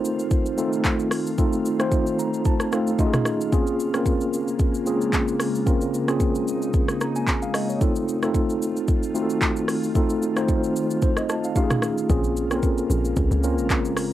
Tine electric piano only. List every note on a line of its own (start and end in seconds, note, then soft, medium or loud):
0.00 0.57 A3 medium
0.00 0.58 C4 medium
0.00 0.58 D#4 medium
0.00 0.58 F4 medium
0.00 0.59 A4 medium
0.00 3.01 A#4 medium
0.00 0.44 C5 medium
0.57 1.23 A3 medium
0.57 1.23 C4 medium
0.57 1.23 D#4 medium
0.57 1.23 F4 medium
0.57 1.24 A4 loud
1.38 1.71 A3 medium
1.38 1.71 C4 medium
1.38 1.71 D#4 medium
1.38 1.71 F4 medium
1.38 1.71 A4 medium
1.79 2.54 A3 medium
1.79 2.54 C4 medium
1.79 2.54 D#4 medium
1.79 2.54 F4 medium
1.79 2.55 C5 loud
2.19 2.44 A#5 medium
2.46 2.71 A5 medium
2.72 2.98 A3 medium
2.72 2.99 C4 medium
2.72 2.98 D#4 medium
2.72 2.99 F4 medium
2.72 2.99 A4 medium
2.72 2.97 F5 medium
2.99 3.43 A3 medium
2.99 3.43 C#4 medium
2.99 3.43 D#4 medium
2.99 3.43 F4 medium
2.99 3.07 F#4 medium
2.99 3.49 D#5 medium
3.07 3.47 G#4 loud
3.52 3.85 A#3 medium
3.52 3.85 C4 medium
3.52 3.85 C#4 medium
3.52 3.86 F4 medium
3.52 3.86 G#4 medium
3.94 4.68 A#3 medium
3.94 4.68 C4 medium
3.94 4.69 C#4 medium
3.94 4.69 F4 medium
3.94 4.69 A#4 medium
4.86 5.52 A#3 medium
4.86 5.52 C4 medium
4.86 5.52 C#4 medium
4.86 5.52 F4 medium
4.86 5.52 G#4 medium
5.66 5.99 A#3 medium
5.66 5.99 C4 medium
5.66 5.99 C#4 medium
5.66 6.00 F4 medium
5.66 6.00 A#4 medium
6.08 6.82 A#3 medium
6.08 6.83 C4 medium
6.08 6.83 C#4 medium
6.08 6.83 F4 medium
6.08 6.83 G#4 medium
7.01 7.15 A#5 medium
7.16 7.41 G#5 medium
7.42 7.54 F5 medium
7.55 7.68 D#5 medium
7.69 7.95 C#5 medium
7.81 8.14 A3 medium
7.81 8.14 C4 medium
7.81 8.14 D#4 medium
7.81 8.14 F4 medium
7.81 8.14 A4 medium
8.22 8.97 A3 medium
8.22 8.97 C4 medium
8.22 8.97 D#4 medium
8.22 8.97 F4 medium
8.22 8.98 A4 loud
9.14 9.80 A3 medium
9.14 9.80 C4 medium
9.14 9.80 D#4 medium
9.14 9.81 F4 medium
9.14 9.22 F#4 medium
9.22 9.84 A4 medium
9.95 10.28 A3 medium
9.95 10.28 C4 medium
9.95 10.28 D#4 medium
9.95 10.28 F4 medium
9.95 10.28 A4 medium
10.36 11.11 A3 medium
10.36 11.11 C4 medium
10.36 11.11 D#4 medium
10.36 11.12 F4 medium
10.36 10.76 C5 loud
11.03 11.17 C5 medium
11.17 11.43 D#5 medium
11.29 11.54 A5 medium
11.44 11.55 F5 medium
11.56 12.00 A3 medium
11.56 12.00 C#4 medium
11.56 12.00 D#4 medium
11.56 12.00 F4 medium
11.56 11.64 G4 medium
11.56 12.06 F5 medium
11.64 12.04 G#4 loud
12.09 12.42 A#3 medium
12.09 12.42 C4 medium
12.09 12.42 C#4 medium
12.09 12.43 F4 medium
12.09 12.43 G#4 medium
12.51 13.25 A#3 medium
12.51 13.26 C4 medium
12.51 13.26 C#4 medium
12.51 13.26 F4 medium
12.51 12.57 A4 medium
12.59 13.29 A#4 medium
13.43 14.09 A#3 medium
13.43 14.09 C4 medium
13.43 14.09 C#4 medium
13.43 14.09 F4 medium
13.43 14.09 A#4 medium